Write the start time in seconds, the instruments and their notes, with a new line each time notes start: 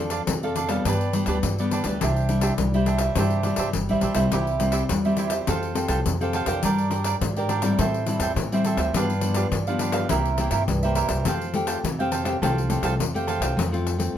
Already playing: upright bass F2, nylon-string guitar F3 C4, cavaquinho A4 D5 F5
0.00 nylon-string guitar D4 A4
0.10 cavaquinho D4 A4 D5 F5, pandeiro
0.27 upright bass F2, nylon-string guitar C3, pandeiro
0.43 nylon-string guitar C4 D4 A4, cavaquinho A4 D5 F5, pandeiro
0.56 cavaquinho D4 A4 D5 F5, pandeiro
0.68 nylon-string guitar G3 B3 D4, cavaquinho A4 D5 F5, pandeiro
0.85 upright bass G2, nylon-string guitar G2, cavaquinho D4 G4 B4 D5, pandeiro
1.01 pandeiro
1.13 nylon-string guitar G3 B3 D4, cavaquinho D4 G4 B4 D5, pandeiro
1.26 upright bass D2, cavaquinho D4 G4 B4 D5, pandeiro
1.43 upright bass G2, nylon-string guitar D3, pandeiro
1.59 nylon-string guitar G3 B3 D4, cavaquinho G4 B4 D5, pandeiro
1.71 cavaquinho D4 G4 B4 D5, pandeiro
1.84 upright bass D2, nylon-string guitar G3 D4 E4, cavaquinho G4 B4 D5, pandeiro
2.01 upright bass C2, nylon-string guitar C3, cavaquinho D4 G4 C5 E5, pandeiro
2.16 pandeiro
2.29 nylon-string guitar G3 D4 E4, pandeiro
2.41 cavaquinho D4 G4 C5 E5, pandeiro
2.58 upright bass C2, nylon-string guitar G3, pandeiro
2.74 nylon-string guitar G3 D4 E4, cavaquinho G4 C5 E5, pandeiro
2.86 cavaquinho D4 G4 C5 E5, pandeiro
2.98 cavaquinho G4 C5 E5, pandeiro
3.15 upright bass G2, nylon-string guitar C3 G3 D4 E4, cavaquinho D4 G4 C5 E5, pandeiro
3.30 pandeiro
3.43 nylon-string guitar G3 D4 E4, cavaquinho D4 G4 C5 E5, pandeiro
3.56 upright bass G2, cavaquinho D4 G4 C5 E5, pandeiro
3.73 upright bass G1, nylon-string guitar G3, pandeiro
3.89 upright bass A1, nylon-string guitar G3 D4 E4, cavaquinho G4 C5 E5, pandeiro
4.01 upright bass A#1, cavaquinho D4 G4 C5 E5, pandeiro
4.15 upright bass C2, nylon-string guitar G3 C4 E4, cavaquinho G4 C5 E5, pandeiro
4.32 upright bass C2, nylon-string guitar C3, cavaquinho E4 G4 C5 E5, pandeiro
4.47 pandeiro
4.60 nylon-string guitar G3 C4 E4, pandeiro
4.72 cavaquinho E4 G4 C5 E5, pandeiro
4.89 upright bass E2, nylon-string guitar G3, pandeiro
5.05 nylon-string guitar G3 C4 E4, cavaquinho G4 C5 E5, pandeiro
5.17 cavaquinho E4 G4 C5 E5, pandeiro
5.30 cavaquinho G4 C5 E5, pandeiro
5.47 upright bass F2, nylon-string guitar F3 C4 G4 A4, cavaquinho A4 C5 F5 G5, pandeiro
5.63 pandeiro
5.75 nylon-string guitar C4 G4 A4, cavaquinho A4 C5 F5 G5, pandeiro
5.88 upright bass C2, cavaquinho A4 C5 F5 G5, pandeiro
6.05 upright bass F2, nylon-string guitar C3, pandeiro
6.21 nylon-string guitar C4 G4 A4, cavaquinho C5 F5 G5, pandeiro
6.33 cavaquinho A4 C5 F5 G5, pandeiro
6.46 upright bass F2, nylon-string guitar D4 G4 A#4, cavaquinho C5 F5 G5, pandeiro
6.63 upright bass G2, nylon-string guitar G3, cavaquinho D4 A#4 D5 G5, pandeiro
6.78 pandeiro
6.91 nylon-string guitar D4 G4 A#4, pandeiro
7.04 cavaquinho D4 A#4 D5 G5, pandeiro
7.21 upright bass G#2, nylon-string guitar D3, pandeiro
7.36 nylon-string guitar D4 G4 A#4, cavaquinho A#4 D5 G5, pandeiro
7.49 cavaquinho D4 A#4 D5 G5, pandeiro
7.62 nylon-string guitar G3 C4 E4, cavaquinho A#4 D5 G5, pandeiro
7.79 upright bass A2, nylon-string guitar A2, cavaquinho A4 C5 E5 G5, pandeiro
7.94 pandeiro
8.06 nylon-string guitar G3 C4 E4, cavaquinho A4 C5 E5 G5, pandeiro
8.20 upright bass E2, cavaquinho A4 C5 E5 G5, pandeiro
8.36 upright bass A2, nylon-string guitar E3, pandeiro
8.52 nylon-string guitar G3 C4 E4, cavaquinho C5 E5 G5, pandeiro
8.65 cavaquinho A4 C5 E5 G5, pandeiro
8.77 upright bass D2, cavaquinho C5 E5 G5, pandeiro
8.93 upright bass G2, nylon-string guitar G2 F3 B3 D4, cavaquinho D4 G4 B4 F5, pandeiro
9.10 pandeiro
9.21 nylon-string guitar F3 B3 D4, pandeiro
9.34 cavaquinho D4 G4 B4 F5, pandeiro
9.51 upright bass G2, nylon-string guitar D3, pandeiro
9.67 nylon-string guitar F3 B3 D4, cavaquinho G4 B4 F5, pandeiro
9.79 cavaquinho D4 G4 B4 F5, pandeiro
9.92 cavaquinho G4 B4 F5, pandeiro
10.09 upright bass C2, nylon-string guitar C3 A#3 E4 G4, cavaquinho E4 A#4 C5 E5, pandeiro
10.25 pandeiro
10.38 nylon-string guitar A#3 E4 G4, cavaquinho E4 A#4 C5 E5, pandeiro
10.51 upright bass G2, cavaquinho E4 A#4 C5 E5, pandeiro
10.68 upright bass C2, nylon-string guitar G2, pandeiro
10.83 nylon-string guitar A#3 E4 G4, cavaquinho A#4 C5 E5, pandeiro
10.95 cavaquinho E4 A#4 C5 E5, pandeiro
11.09 upright bass C2, cavaquinho A#4 C5 E5, pandeiro
11.25 upright bass F2, nylon-string guitar F3 A3 C4 G4, cavaquinho A4 C5 F5 G5, pandeiro
11.41 pandeiro
11.54 nylon-string guitar A3 C4 G4, pandeiro
11.67 cavaquinho A4 C5 F5 G5, pandeiro
11.84 upright bass F2, nylon-string guitar C3, pandeiro
11.99 nylon-string guitar A3 C4 G4, cavaquinho C5 F5 G5, pandeiro
12.12 cavaquinho A4 C5 F5 G5, pandeiro
12.24 nylon-string guitar A3 C4 G4, cavaquinho C5 F5 G5, pandeiro
12.42 upright bass C2, nylon-string guitar F3 A3 C4 G4, cavaquinho A4 C5 F5 G5, pandeiro
12.58 pandeiro
12.70 nylon-string guitar A3 C4 G4, cavaquinho A4 C5 F5 G5, pandeiro
12.82 upright bass C2, cavaquinho A4 C5 F5 G5, pandeiro
12.99 upright bass F2, nylon-string guitar C3, pandeiro
13.14 nylon-string guitar A3 C4 G4, cavaquinho C5 F5 G5, pandeiro
13.27 cavaquinho A4 C5 F5 G5, pandeiro
13.40 upright bass C2, cavaquinho C5 F5 G5, pandeiro
13.57 upright bass F2, nylon-string guitar F3 A3 C4 F4, pandeiro
13.72 nylon-string guitar A3 C4 F4, pandeiro
13.87 pandeiro
13.98 nylon-string guitar A3 C4 F4, pandeiro